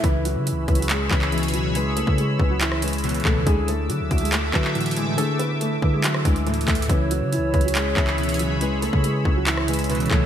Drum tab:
HH |x-----------x-----------x-----------x---x---x---x-----------------------x--x--x--x--x-----------|x-----------x-----------x-----------------------x-----------x--x--x--x--x--x--x--x--------------|x-----------x-----------x-----------x---x---x---x-----------------------x--x--x--x--x-----------|x-----------x-----------x-----------------------x-----------x-----x-----x---x---x---x---x---x---|
CP |------------------------------------------------x-----------x-----x-----------------------------|------------------------------------------------x-----------------------------------x-----------|------------------------------------------------x-----------x-----x-----------------------------|------------------------------------------------x-----------------------------------x-----------|
SD |------------------------------------------------------------------------------------------------|------------------------------------------------------r-----------------------------------------|------------------------------------------------------------------------------------------------|------------------------------------------------------r-----------------------------------------|
BD |o-----------------------------------o-----------------------o-----------------------------------|------------------o-----------------o-----------------------------------------------o-----------|o-----------------------------------o-----------------------o-----------------------------------|------------------------------------o-----------------------o-----------------------o-----------|

HH |x-----------x-----------x-----------x---x---x---x-----------------------x--x--x--x--x-----------|x-----------x-----------x-----------------------x-----------x--x--x--x--x--x--x--x--------------|
CP |------------------------------------------------x-----------x-----x-----------------------------|------------------------------------------------x-----------------------------------x-----------|
SD |------------------------------------------------------------------------------------------------|------------------------------------------------------r-----------------------------------------|
BD |o-----------------------------------o-----------------------o-----------------------------------|------------------o-----------------o-----------------------------------------------o-----------|